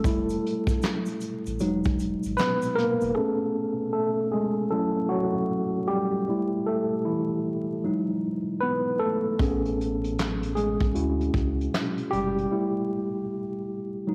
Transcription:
Already playing: tine electric piano A4
0.04 sub bass F1, tine electric piano G3 A3 E4, kick, closed hi-hat, shaker
0.29 closed hi-hat, shaker
0.46 closed hi-hat
0.67 kick, closed hi-hat, shaker
0.82 snare, clap, closed hi-hat, shaker
1.06 closed hi-hat, shaker
1.21 closed hi-hat, shaker
1.46 sub bass A1, closed hi-hat, shaker
1.59 sub bass E1, tine electric piano F#3 G#3 D#4, closed hi-hat, shaker
1.84 kick, closed hi-hat, shaker
1.99 closed hi-hat, shaker
2.23 sub bass G#1, closed hi-hat, shaker
2.37 tine electric piano B3 B4, snare, clap, closed hi-hat, shaker
2.62 closed hi-hat, shaker
2.76 tine electric piano A#3 A#4, snare, closed hi-hat
3.01 sub bass E1, closed hi-hat, shaker
3.15 tine electric piano A3 B3 C#4 G#4 A4
3.93 tine electric piano A3 A4
4.32 tine electric piano G#3 G#4
4.71 tine electric piano F#3 A3 C#4 E4 A4
5.09 tine electric piano F#3 F#4
5.87 tine electric piano G3 G4
6.28 tine electric piano G3 A3 E4
6.66 tine electric piano A3 A4
7.05 tine electric piano E3 E4
7.84 tine electric piano F#3 G#3 D#4
8.61 tine electric piano B3 B4
9.00 tine electric piano A3 A4
9.39 sub bass A1, tine electric piano B3 C#4 G#4, kick, closed hi-hat
9.65 closed hi-hat
9.81 closed hi-hat
10.04 closed hi-hat
10.19 snare, clap, closed hi-hat
10.43 closed hi-hat
10.55 tine electric piano G#3 G#4, closed hi-hat
10.81 sub bass A1, kick, closed hi-hat
10.95 sub bass D2, tine electric piano C#4 E4 F#4, closed hi-hat
11.21 closed hi-hat
11.34 sub bass C#2, kick, closed hi-hat
11.61 closed hi-hat
11.74 snare, clap, closed hi-hat
11.98 closed hi-hat
12.11 sub bass F#1, tine electric piano G3 G4, closed hi-hat
12.38 closed hi-hat
12.51 tine electric piano G3 A3 E4
14.07 tine electric piano F#3 G#3 D#4

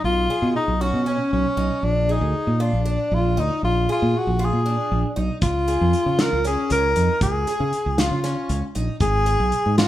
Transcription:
0.04 fingered electric bass B1, tenor saxophone F4
0.30 twelve-string acoustic guitar G#4
0.42 fingered electric bass B2
0.56 tenor saxophone D#4
0.68 fingered electric bass B1
0.81 tenor saxophone C#4, twelve-string acoustic guitar F#4
0.94 fingered electric bass B2
1.06 twelve-string acoustic guitar C#4
1.33 fingered electric bass B1, tenor saxophone C#4
1.57 fingered electric bass B1, twelve-string acoustic guitar D#4
1.83 fingered electric bass A#1, tenor saxophone D4
2.09 tenor saxophone D#4, twelve-string acoustic guitar G#4
2.21 fingered electric bass D2
2.47 fingered electric bass A#2
2.60 tenor saxophone D4, twelve-string acoustic guitar F4
2.73 fingered electric bass A#1
2.85 twelve-string acoustic guitar D4
3.12 fingered electric bass A#1, tenor saxophone F4
3.37 fingered electric bass D2, twelve-string acoustic guitar D#4, tenor saxophone D#4
3.63 fingered electric bass A#1, tenor saxophone F4
3.89 tenor saxophone F4, twelve-string acoustic guitar G#4
4.02 fingered electric bass A#2
4.18 tenor saxophone F#4
4.27 fingered electric bass A#1
4.39 twelve-string acoustic guitar F4
4.44 tenor saxophone G#4
4.53 fingered electric bass A#2
4.66 twelve-string acoustic guitar D4
4.92 fingered electric bass A#1
5.16 fingered electric bass B1, twelve-string acoustic guitar D#4
5.42 fingered electric bass C#2, tenor saxophone F4, kick, closed hi-hat
5.68 twelve-string acoustic guitar G#4, closed hi-hat
5.81 fingered electric bass F2
5.93 closed hi-hat
6.06 fingered electric bass C#3
6.19 twelve-string acoustic guitar F4, tenor saxophone A#4, snare, closed hi-hat
6.33 fingered electric bass C#2
6.44 twelve-string acoustic guitar C#4, tenor saxophone G#4, closed hi-hat
6.70 fingered electric bass C#2, tenor saxophone A#4, closed hi-hat
6.96 fingered electric bass F2, twelve-string acoustic guitar D#4, closed hi-hat
7.21 fingered electric bass C#2, tenor saxophone G#4, kick, closed hi-hat
7.47 twelve-string acoustic guitar G#4, closed hi-hat
7.60 fingered electric bass C#3
7.73 closed hi-hat
7.86 fingered electric bass C#2
7.98 twelve-string acoustic guitar F4, tenor saxophone F4, snare, closed hi-hat
8.11 fingered electric bass C#3
8.24 twelve-string acoustic guitar C#4, snare, closed hi-hat
8.49 fingered electric bass C#2, closed hi-hat
8.75 fingered electric bass A#1, twelve-string acoustic guitar D#4, closed hi-hat
9.00 fingered electric bass G#1, tenor saxophone G#4, kick, closed hi-hat
9.26 twelve-string acoustic guitar G#4, closed hi-hat
9.40 fingered electric bass B1
9.52 closed hi-hat
9.66 fingered electric bass G#2
9.78 tenor saxophone F4, twelve-string acoustic guitar F#4, snare, closed hi-hat

